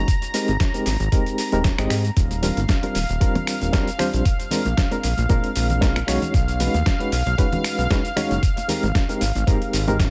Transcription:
Already playing: analog synth pad A#5
0.08 kick, closed hi-hat, cabasa
0.22 closed hi-hat, cabasa
0.34 reed electric piano G#3 C4 D#4 G4 A#4, open hi-hat, cabasa
0.48 analog synth bass G#1, closed hi-hat, cabasa
0.60 kick, snare, closed hi-hat, cabasa
0.74 reed electric piano G#3 C4 D#4 G4 A#4, closed hi-hat, cabasa
0.86 analog synth bass G#1, snare, open hi-hat, cabasa
1.00 analog synth bass G#1, closed hi-hat, cabasa
1.12 reed electric piano G#3 C4 D#4 G4 A#4, kick, closed hi-hat, cabasa
1.26 closed hi-hat, cabasa
1.38 open hi-hat, cabasa
1.52 analog synth bass D#1, reed electric piano G#3 C4 D#4 G4 A#4, closed hi-hat, cabasa
1.64 kick, snare, closed hi-hat, cabasa
1.78 analog synth bass G#1, reed electric piano G#3 C4 D#4 G4 D#5, finger snap, closed hi-hat, cabasa
1.90 analog synth bass G#2, finger snap, open hi-hat, cabasa
2.05 closed hi-hat, cabasa
2.17 analog synth bass D#1, analog synth pad F5, kick, closed hi-hat, cabasa
2.31 closed hi-hat, muted conga, cabasa
2.42 reed electric piano G3 C4 D4 F4 A#4, open hi-hat, low conga, cabasa
2.57 analog synth bass G1, closed hi-hat, high conga, cabasa
2.68 kick, snare, closed hi-hat, muted conga, cabasa
2.82 reed electric piano G3 C4 D4 F4 A#4, closed hi-hat
2.95 analog synth bass D#1, open hi-hat, muted conga, cabasa
3.09 analog synth bass D#1, closed hi-hat, cabasa
3.20 reed electric piano G3 C4 D4 F4 A#4, kick, closed hi-hat, cabasa
3.35 closed hi-hat, muted conga, high conga, low conga
3.47 finger snap, open hi-hat, cabasa
3.61 analog synth bass D#1, closed hi-hat, muted conga, cabasa
3.73 reed electric piano G3 C4 D4 F4 A#4, kick, snare, closed hi-hat, cabasa
3.87 closed hi-hat, cabasa
3.98 reed electric piano G3 C4 D4 F4 C5, finger snap, open hi-hat, muted conga, low conga, cabasa
4.14 analog synth bass A#1, closed hi-hat, cabasa
4.25 kick, closed hi-hat, muted conga, cabasa
4.40 closed hi-hat, cabasa
4.51 reed electric piano G#3 C4 D4 F4 A#4, open hi-hat, low conga, cabasa
4.65 analog synth bass A#1, closed hi-hat, muted conga, high conga, cabasa
4.77 kick, snare, closed hi-hat, cabasa
4.91 reed electric piano G#3 C4 D4 F4 A#4, closed hi-hat, muted conga, cabasa
5.03 analog synth bass A#1, open hi-hat, cabasa
5.17 analog synth bass A#1, closed hi-hat, high conga, cabasa
5.29 analog synth bass A#2, reed electric piano G#3 C4 D4 F4 A#4, kick, closed hi-hat, muted conga, cabasa
5.44 closed hi-hat
5.56 analog synth bass A#1, open hi-hat, muted conga, cabasa
5.70 closed hi-hat, low conga, cabasa
5.81 reed electric piano G#3 C4 D4 F4 A#4, kick, snare, closed hi-hat, cabasa
5.96 finger snap, closed hi-hat, muted conga, high conga, cabasa
6.07 analog synth bass B1, reed electric piano G#3 C#4 D#4 F#4 C#5, finger snap, open hi-hat, cabasa
6.22 closed hi-hat, muted conga, low conga, cabasa
6.34 analog synth bass B1, kick, closed hi-hat, cabasa
6.48 closed hi-hat, cabasa
6.59 reed electric piano G#3 C#4 D#4 F#4 B4, open hi-hat, muted conga, low conga, cabasa
6.74 analog synth bass D#2, closed hi-hat, high conga, cabasa
6.86 kick, snare, closed hi-hat, muted conga, cabasa
6.99 reed electric piano G#3 C#4 D#4 F#4 B4, closed hi-hat
7.12 analog synth bass B1, open hi-hat, cabasa
7.26 analog synth bass B1, closed hi-hat, muted conga, cabasa
7.38 reed electric piano G#3 C#4 D#4 F#4 B4, kick, closed hi-hat, cabasa
7.52 closed hi-hat, muted conga, high conga, low conga
7.64 finger snap, open hi-hat, cabasa
7.78 analog synth bass B1, closed hi-hat, cabasa
7.90 reed electric piano G#3 C#4 D#4 F#4 B4, kick, snare, closed hi-hat, muted conga, cabasa
8.05 closed hi-hat, cabasa
8.16 reed electric piano G#3 C#4 D#4 F#4 C#5, finger snap, open hi-hat, muted conga, low conga, cabasa
8.31 analog synth bass F#1, closed hi-hat, cabasa
8.43 kick, closed hi-hat, cabasa
8.57 closed hi-hat, muted conga, cabasa
8.68 reed electric piano G#3 C4 D#4 G4 A#4, open hi-hat, low conga, cabasa
8.83 analog synth bass G#1, closed hi-hat, muted conga, high conga, cabasa
8.95 kick, snare, closed hi-hat, cabasa
9.09 reed electric piano G#3 C4 D#4 G4 A#4, closed hi-hat, cabasa
9.21 analog synth bass G#1, open hi-hat, muted conga, cabasa
9.35 analog synth bass G#1, closed hi-hat, high conga, cabasa
9.47 analog synth bass G#2, reed electric piano G#3 C4 D#4 G4 A#4, kick, closed hi-hat, muted conga, cabasa
9.62 closed hi-hat
9.73 analog synth bass G#1, open hi-hat, cabasa
9.87 reed electric piano G#3 C4 D#4 G4 A#4, closed hi-hat, muted conga, low conga, cabasa
10.00 kick, snare, closed hi-hat, cabasa

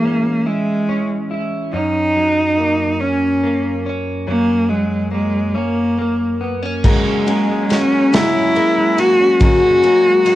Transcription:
Already playing: clean electric guitar E3 G#3 E4, cello A#3
0.05 clean electric guitar C#4
0.46 cello G#3, clean electric guitar E4
0.89 clean electric guitar C#4
1.31 clean electric guitar E4
1.73 clean electric guitar F#2 C#4, cello D#4
2.16 clean electric guitar F#3
2.58 clean electric guitar A#3
3.01 clean electric guitar C#4, cello C#4
3.43 clean electric guitar A#3
3.86 clean electric guitar C#4
4.27 clean electric guitar F#2 C#4, cello A#3
4.70 clean electric guitar F#3, cello G#3
5.12 cello G#3, clean electric guitar A#3
5.55 cello A#3, clean electric guitar C#4
5.99 clean electric guitar A#3
6.41 clean electric guitar B3
6.63 clean electric guitar C#4
6.84 steel-string acoustic guitar F#2 C#3 G#3 A#3 C#4 F#4, clean electric guitar F#3 A#4, cello G#3, kick, crash
7.06 clean electric guitar C#4
7.27 steel-string acoustic guitar G#3 A#3 C#4 F#4, clean electric guitar A#4, ride
7.49 clean electric guitar G#3
7.69 steel-string acoustic guitar G#3 A#3 C#4 F#4, cello C#4, clean electric guitar F#4, snare, ride
7.92 clean electric guitar C#4
8.13 steel-string acoustic guitar F#2 C#3 G#3 A#3 C#4 F#4, clean electric guitar F#3 A#4, cello E4, snare, ride
8.35 clean electric guitar C#4
8.55 steel-string acoustic guitar G#3 A#3 C#4 F#4, clean electric guitar A#4, ride
8.78 clean electric guitar G#3
8.98 steel-string acoustic guitar G#3 A#3 C#4 F#4, clean electric guitar F#4, cello F#4, ride
9.21 clean electric guitar C#4
9.40 steel-string acoustic guitar F#2 C#3 G#3 A#3 C#4 F#4, clean electric guitar F#3 A#4, cello F#4, kick, ride
9.64 clean electric guitar C#4
9.82 steel-string acoustic guitar G#3 A#3 C#4 F#4, clean electric guitar A#4, ride
10.07 clean electric guitar G#3
10.25 steel-string acoustic guitar G#3 A#3 C#4 F#4, clean electric guitar F#4, ride

